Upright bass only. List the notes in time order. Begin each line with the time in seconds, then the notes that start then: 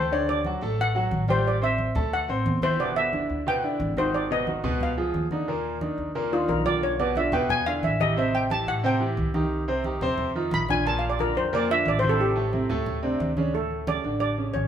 Already playing: D2
0.61 A1
1.11 A1
1.95 D2
2.28 A1
2.45 G1
3.29 D2
3.80 G#1
4.64 C#2
5.14 D#2
5.98 D#2
6.48 B1
7.32 E2
7.83 A1
8.66 A2
9.17 C2
10.01 F2
10.51 A#1
11.35 F2
11.85 A1
12.69 D2
13.20 D2
14.04 A1
14.54 A1